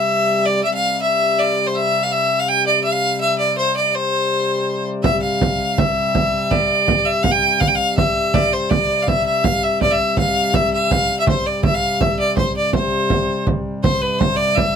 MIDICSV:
0, 0, Header, 1, 4, 480
1, 0, Start_track
1, 0, Key_signature, 0, "major"
1, 0, Tempo, 366524
1, 830, Time_signature, 3, 2, 24, 8
1, 19326, End_track
2, 0, Start_track
2, 0, Title_t, "Fiddle"
2, 0, Program_c, 0, 110
2, 0, Note_on_c, 0, 76, 86
2, 596, Note_on_c, 0, 74, 76
2, 615, Note_off_c, 0, 76, 0
2, 828, Note_off_c, 0, 74, 0
2, 836, Note_on_c, 0, 76, 82
2, 945, Note_off_c, 0, 76, 0
2, 966, Note_on_c, 0, 77, 84
2, 1295, Note_off_c, 0, 77, 0
2, 1337, Note_on_c, 0, 76, 85
2, 1818, Note_on_c, 0, 74, 76
2, 1837, Note_off_c, 0, 76, 0
2, 2184, Note_on_c, 0, 72, 69
2, 2204, Note_off_c, 0, 74, 0
2, 2298, Note_on_c, 0, 76, 89
2, 2317, Note_off_c, 0, 72, 0
2, 2657, Note_on_c, 0, 77, 82
2, 2676, Note_off_c, 0, 76, 0
2, 2776, Note_on_c, 0, 76, 90
2, 2796, Note_off_c, 0, 77, 0
2, 3136, Note_on_c, 0, 77, 79
2, 3155, Note_off_c, 0, 76, 0
2, 3248, Note_on_c, 0, 79, 90
2, 3268, Note_off_c, 0, 77, 0
2, 3483, Note_off_c, 0, 79, 0
2, 3493, Note_on_c, 0, 74, 85
2, 3710, Note_off_c, 0, 74, 0
2, 3717, Note_on_c, 0, 76, 89
2, 3840, Note_on_c, 0, 77, 92
2, 3859, Note_off_c, 0, 76, 0
2, 4194, Note_off_c, 0, 77, 0
2, 4202, Note_on_c, 0, 76, 88
2, 4424, Note_off_c, 0, 76, 0
2, 4430, Note_on_c, 0, 74, 80
2, 4658, Note_off_c, 0, 74, 0
2, 4688, Note_on_c, 0, 72, 84
2, 4908, Note_off_c, 0, 72, 0
2, 4933, Note_on_c, 0, 74, 72
2, 5170, Note_on_c, 0, 72, 81
2, 5190, Note_off_c, 0, 74, 0
2, 6367, Note_off_c, 0, 72, 0
2, 6588, Note_on_c, 0, 76, 89
2, 6818, Note_off_c, 0, 76, 0
2, 6842, Note_on_c, 0, 77, 81
2, 7569, Note_on_c, 0, 76, 79
2, 7588, Note_off_c, 0, 77, 0
2, 8524, Note_on_c, 0, 74, 87
2, 8543, Note_off_c, 0, 76, 0
2, 9237, Note_on_c, 0, 76, 83
2, 9256, Note_off_c, 0, 74, 0
2, 9466, Note_on_c, 0, 77, 91
2, 9485, Note_off_c, 0, 76, 0
2, 9582, Note_on_c, 0, 79, 94
2, 9602, Note_off_c, 0, 77, 0
2, 9958, Note_on_c, 0, 77, 90
2, 9977, Note_off_c, 0, 79, 0
2, 10055, Note_on_c, 0, 79, 76
2, 10075, Note_off_c, 0, 77, 0
2, 10150, Note_on_c, 0, 77, 92
2, 10170, Note_off_c, 0, 79, 0
2, 10434, Note_off_c, 0, 77, 0
2, 10442, Note_on_c, 0, 76, 86
2, 10924, Note_on_c, 0, 74, 89
2, 10944, Note_off_c, 0, 76, 0
2, 11171, Note_on_c, 0, 72, 75
2, 11191, Note_off_c, 0, 74, 0
2, 11393, Note_on_c, 0, 74, 82
2, 11413, Note_off_c, 0, 72, 0
2, 11820, Note_on_c, 0, 77, 61
2, 11839, Note_off_c, 0, 74, 0
2, 11889, Note_on_c, 0, 76, 82
2, 11909, Note_off_c, 0, 77, 0
2, 12119, Note_off_c, 0, 76, 0
2, 12127, Note_on_c, 0, 76, 79
2, 12364, Note_on_c, 0, 77, 89
2, 12384, Note_off_c, 0, 76, 0
2, 12614, Note_on_c, 0, 76, 76
2, 12634, Note_off_c, 0, 77, 0
2, 12849, Note_off_c, 0, 76, 0
2, 12854, Note_on_c, 0, 74, 81
2, 12976, Note_on_c, 0, 76, 90
2, 12996, Note_off_c, 0, 74, 0
2, 13330, Note_off_c, 0, 76, 0
2, 13341, Note_on_c, 0, 77, 84
2, 13806, Note_on_c, 0, 76, 88
2, 13826, Note_off_c, 0, 77, 0
2, 14044, Note_off_c, 0, 76, 0
2, 14063, Note_on_c, 0, 76, 77
2, 14291, Note_on_c, 0, 77, 87
2, 14311, Note_off_c, 0, 76, 0
2, 14646, Note_off_c, 0, 77, 0
2, 14662, Note_on_c, 0, 76, 78
2, 14764, Note_off_c, 0, 76, 0
2, 14778, Note_on_c, 0, 72, 71
2, 15011, Note_on_c, 0, 74, 69
2, 15031, Note_off_c, 0, 72, 0
2, 15239, Note_off_c, 0, 74, 0
2, 15247, Note_on_c, 0, 76, 89
2, 15377, Note_on_c, 0, 77, 89
2, 15396, Note_off_c, 0, 76, 0
2, 15722, Note_on_c, 0, 76, 78
2, 15742, Note_off_c, 0, 77, 0
2, 15960, Note_off_c, 0, 76, 0
2, 15971, Note_on_c, 0, 74, 74
2, 16188, Note_off_c, 0, 74, 0
2, 16201, Note_on_c, 0, 72, 67
2, 16422, Note_off_c, 0, 72, 0
2, 16460, Note_on_c, 0, 74, 71
2, 16672, Note_off_c, 0, 74, 0
2, 16698, Note_on_c, 0, 72, 69
2, 17592, Note_off_c, 0, 72, 0
2, 18122, Note_on_c, 0, 72, 85
2, 18355, Note_on_c, 0, 71, 76
2, 18375, Note_off_c, 0, 72, 0
2, 18582, Note_on_c, 0, 72, 83
2, 18601, Note_off_c, 0, 71, 0
2, 18809, Note_on_c, 0, 74, 91
2, 18829, Note_off_c, 0, 72, 0
2, 19057, Note_on_c, 0, 76, 91
2, 19076, Note_off_c, 0, 74, 0
2, 19326, Note_off_c, 0, 76, 0
2, 19326, End_track
3, 0, Start_track
3, 0, Title_t, "Harmonium"
3, 0, Program_c, 1, 20
3, 0, Note_on_c, 1, 48, 57
3, 0, Note_on_c, 1, 55, 61
3, 810, Note_off_c, 1, 48, 0
3, 813, Note_off_c, 1, 55, 0
3, 830, Note_on_c, 1, 48, 58
3, 833, Note_on_c, 1, 55, 53
3, 6587, Note_off_c, 1, 48, 0
3, 6588, Note_off_c, 1, 55, 0
3, 6607, Note_on_c, 1, 48, 60
3, 6608, Note_on_c, 1, 55, 59
3, 12344, Note_off_c, 1, 55, 0
3, 12348, Note_off_c, 1, 48, 0
3, 12363, Note_on_c, 1, 55, 56
3, 12368, Note_on_c, 1, 48, 57
3, 18103, Note_off_c, 1, 55, 0
3, 18107, Note_off_c, 1, 48, 0
3, 18123, Note_on_c, 1, 55, 61
3, 18126, Note_on_c, 1, 48, 62
3, 19326, Note_off_c, 1, 48, 0
3, 19326, Note_off_c, 1, 55, 0
3, 19326, End_track
4, 0, Start_track
4, 0, Title_t, "Frame drum"
4, 6603, Note_on_c, 9, 64, 84
4, 6734, Note_off_c, 9, 64, 0
4, 7091, Note_on_c, 9, 64, 78
4, 7222, Note_off_c, 9, 64, 0
4, 7329, Note_on_c, 9, 64, 24
4, 7460, Note_off_c, 9, 64, 0
4, 7571, Note_on_c, 9, 64, 81
4, 7702, Note_off_c, 9, 64, 0
4, 8052, Note_on_c, 9, 64, 71
4, 8183, Note_off_c, 9, 64, 0
4, 8528, Note_on_c, 9, 64, 71
4, 8659, Note_off_c, 9, 64, 0
4, 8775, Note_on_c, 9, 64, 23
4, 8906, Note_off_c, 9, 64, 0
4, 9009, Note_on_c, 9, 64, 74
4, 9140, Note_off_c, 9, 64, 0
4, 9482, Note_on_c, 9, 64, 70
4, 9613, Note_off_c, 9, 64, 0
4, 9967, Note_on_c, 9, 64, 68
4, 10098, Note_off_c, 9, 64, 0
4, 10199, Note_on_c, 9, 64, 24
4, 10330, Note_off_c, 9, 64, 0
4, 10448, Note_on_c, 9, 64, 78
4, 10579, Note_off_c, 9, 64, 0
4, 10921, Note_on_c, 9, 64, 82
4, 11052, Note_off_c, 9, 64, 0
4, 11404, Note_on_c, 9, 64, 75
4, 11535, Note_off_c, 9, 64, 0
4, 11655, Note_on_c, 9, 64, 25
4, 11786, Note_off_c, 9, 64, 0
4, 11888, Note_on_c, 9, 64, 74
4, 12019, Note_off_c, 9, 64, 0
4, 12138, Note_on_c, 9, 64, 22
4, 12269, Note_off_c, 9, 64, 0
4, 12365, Note_on_c, 9, 64, 77
4, 12496, Note_off_c, 9, 64, 0
4, 12850, Note_on_c, 9, 64, 69
4, 12981, Note_off_c, 9, 64, 0
4, 13088, Note_on_c, 9, 64, 25
4, 13219, Note_off_c, 9, 64, 0
4, 13317, Note_on_c, 9, 64, 71
4, 13448, Note_off_c, 9, 64, 0
4, 13800, Note_on_c, 9, 64, 74
4, 13931, Note_off_c, 9, 64, 0
4, 14289, Note_on_c, 9, 64, 77
4, 14420, Note_off_c, 9, 64, 0
4, 14534, Note_on_c, 9, 64, 26
4, 14665, Note_off_c, 9, 64, 0
4, 14761, Note_on_c, 9, 64, 82
4, 14892, Note_off_c, 9, 64, 0
4, 15234, Note_on_c, 9, 64, 90
4, 15365, Note_off_c, 9, 64, 0
4, 15726, Note_on_c, 9, 64, 77
4, 15857, Note_off_c, 9, 64, 0
4, 15966, Note_on_c, 9, 64, 25
4, 16097, Note_off_c, 9, 64, 0
4, 16195, Note_on_c, 9, 64, 78
4, 16326, Note_off_c, 9, 64, 0
4, 16675, Note_on_c, 9, 64, 70
4, 16806, Note_off_c, 9, 64, 0
4, 17157, Note_on_c, 9, 64, 71
4, 17288, Note_off_c, 9, 64, 0
4, 17405, Note_on_c, 9, 64, 24
4, 17536, Note_off_c, 9, 64, 0
4, 17638, Note_on_c, 9, 64, 76
4, 17769, Note_off_c, 9, 64, 0
4, 18125, Note_on_c, 9, 64, 83
4, 18256, Note_off_c, 9, 64, 0
4, 18604, Note_on_c, 9, 64, 77
4, 18735, Note_off_c, 9, 64, 0
4, 19088, Note_on_c, 9, 64, 79
4, 19219, Note_off_c, 9, 64, 0
4, 19326, End_track
0, 0, End_of_file